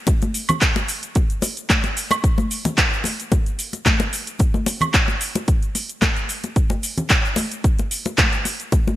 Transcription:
0.07 kick, closed hi-hat, muted conga, shaker
0.22 closed hi-hat, high conga, shaker
0.34 open hi-hat, shaker
0.49 closed hi-hat, muted conga, low conga, high woodblock, shaker
0.61 kick, clap, closed hi-hat, shaker
0.76 muted conga, shaker
0.88 open hi-hat, shaker
1.03 closed hi-hat, shaker
1.15 kick, closed hi-hat, muted conga, shaker
1.30 closed hi-hat, shaker
1.42 open hi-hat, muted conga, shaker
1.57 closed hi-hat, shaker
1.70 kick, clap, closed hi-hat, high conga, shaker
1.84 closed hi-hat, muted conga, shaker
1.97 open hi-hat, shaker
2.11 closed hi-hat, muted conga, high woodblock, shaker
2.24 kick, closed hi-hat, shaker
2.38 muted conga, high conga, shaker
2.51 open hi-hat, shaker
2.65 closed hi-hat, muted conga, low conga, shaker
2.78 kick, clap, closed hi-hat, shaker
2.93 shaker
3.04 open hi-hat, muted conga, high conga, shaker
3.20 closed hi-hat, shaker
3.32 kick, closed hi-hat, muted conga, shaker
3.46 closed hi-hat, shaker
3.59 open hi-hat, shaker
3.73 closed hi-hat, muted conga, shaker
3.86 kick, clap, closed hi-hat, high conga, shaker
4.00 closed hi-hat, muted conga, shaker
4.13 open hi-hat, shaker
4.27 closed hi-hat, shaker
4.39 kick, closed hi-hat, muted conga, shaker
4.54 high conga, shaker
4.66 open hi-hat, muted conga, shaker
4.81 closed hi-hat, low conga, high woodblock, shaker
4.94 kick, clap, closed hi-hat, shaker
5.08 muted conga, shaker
5.21 open hi-hat, shaker
5.35 closed hi-hat, muted conga, shaker
5.48 kick, closed hi-hat, shaker
5.63 closed hi-hat, shaker
5.75 open hi-hat, muted conga, shaker
5.89 closed hi-hat, shaker
6.02 kick, clap, closed hi-hat, muted conga, high conga, shaker
6.17 closed hi-hat, shaker
6.29 open hi-hat, shaker
6.44 closed hi-hat, muted conga, shaker
6.56 kick, closed hi-hat, shaker
6.70 muted conga, high conga, shaker
6.83 open hi-hat, shaker
6.98 closed hi-hat, low conga, shaker
7.09 kick, clap, closed hi-hat, muted conga, shaker
7.25 shaker
7.36 open hi-hat, muted conga, high conga, shaker
7.52 closed hi-hat, shaker
7.64 kick, closed hi-hat, shaker
7.79 closed hi-hat, muted conga, shaker
7.91 open hi-hat, shaker
8.06 closed hi-hat, muted conga, shaker
8.18 kick, clap, closed hi-hat, high conga, shaker
8.33 closed hi-hat, shaker
8.45 open hi-hat, muted conga, shaker
8.60 closed hi-hat, shaker
8.72 kick, closed hi-hat, muted conga, shaker
8.88 high conga, shaker

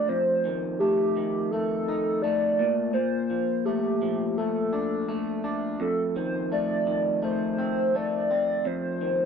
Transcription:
Already playing: F3 A3 D4 D5
0.09 F2 C5
0.45 D#3
0.80 A3 G4
1.17 D#3
1.51 A3 A4
1.88 D#4
2.22 A3 D5
2.59 A#2
2.94 A#2 C5
3.30 F3
3.65 A3 G4
4.02 F3
4.37 A3 A4
4.73 D4
5.08 A3
5.44 D4
5.80 F2 A4
6.16 D#3 C5
6.52 A3 D5
6.87 D#3
7.23 A3 C5
7.59 C4
7.95 A3 D5
8.31 C4
8.65 F2 C5
9.01 D#3

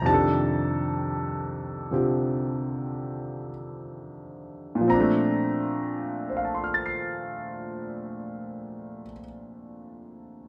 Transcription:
0.02 F2 C3
0.06 D#3 D4 A5
0.10 G4 A4
1.91 C3 D3 C4 F4 G4
4.75 A#2
4.81 F3
4.88 C4 A#5
4.94 D4
5.00 A3
6.30 C5
6.37 F5
6.45 A5
6.55 C6
6.64 F6
6.74 A6
6.86 C7

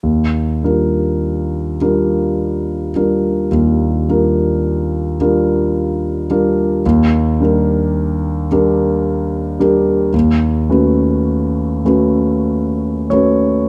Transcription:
0.03 D#2
0.63 G3 D4 F4 A#4
1.81 G3 D4 F4 A#4
2.96 G3 D4 F4 A#4
3.51 D#2
4.09 G3 D4 F4 A#4
5.20 G3 D4 F4 A#4
6.30 G3 D4 F4 A#4
6.86 D#2
7.40 G3 D4 G4 A#4
8.52 G3 D4 G4 A#4
9.59 G3 D4 G4 A#4
10.14 D#2
10.69 A3 C#4 F#4 B4
11.85 A3 C#4 F#4 B4
13.10 A3 C#4 F#4 B4 C#5

